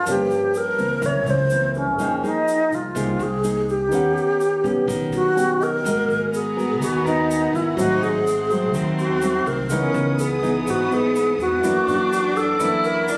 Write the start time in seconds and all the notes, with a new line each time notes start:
0.03 G1 G2 F3 A#4 A5, shaker
0.07 A#3 C#4 G4 C#5 F5
0.31 shaker
0.54 A#4, shaker
0.78 C#2 E3 A#3 C4, shaker
1.00 F#1 F#2 C#4 A#4 C5, shaker
1.05 C#5 E5
1.25 C#2, shaker
1.30 C5
1.50 E3 A#3 C4, shaker
1.74 C#4, shaker
1.95 F1 F3 A#3 G#4 A#4, shaker
1.99 D#4 G#4 D#5 G5
2.23 A#3 D#4 G#4, shaker
2.48 shaker
2.70 C2, shaker
2.75 F4
2.95 C2 C3 A#3 D#4 G#4, shaker
3.19 C2 G#4, shaker
3.43 A#3 D#4 G#4, shaker
3.69 G4, shaker
3.88 D#2 D#3 B3 C#4 D#4 B4, shaker
3.93 G4 C#5 F#5
4.17 shaker
4.41 shaker
4.64 B1 B3 C#4 G4, shaker
4.87 B1 D#3, shaker
5.12 B1 F#4, shaker
5.36 B3 C#4 G4 G5, shaker
5.60 A#4 D#5, shaker
5.82 G#1 G#3 A#3 F#4 A#4
5.86 A#4 D#5 F#5 G#5 A#5, shaker
6.08 G#1, shaker
6.31 B3 G#4, shaker
6.56 B3 F#4 A#4, shaker
6.81 D#2 D#3 F#4, shaker
7.04 B3 D#4 F#4 A#4, shaker
7.31 shaker
7.53 G#1 E4, shaker
7.75 G#1 G#2 F#3 A3 C4 D#4 F#4 C6, shaker
7.79 C5 D#5
8.01 G#1 G#4, shaker
8.27 C4, shaker
8.50 F#3 A3 C4, shaker
8.73 D#2 D#3, shaker
8.99 F#4, shaker
9.22 F#3 A3 C4, shaker
9.46 C2 A#4, shaker
9.70 C#2 C#3 E3 B3 C#4 D#4 G#4 D#5 D#6, shaker
9.94 C#2, shaker
10.19 B3 G#4, shaker
10.42 E3 B3 D#4, shaker
10.66 G#1 G#2 F#4, shaker
10.91 E3 B3 D#4 G#4, shaker
11.16 shaker
11.38 E2 F#4, shaker
11.60 F#2 E3 A#3 D4 E4 F#4 A4 D6
11.64 A#3 D4 D5, shaker
11.87 F#2 E3 A#3 D4, shaker
12.13 shaker
12.36 A4, shaker
12.60 D2 F#2 E3 A#3 D4 E4, shaker
12.84 A#4, shaker
13.07 D4 E4 A4 A#4 D5, shaker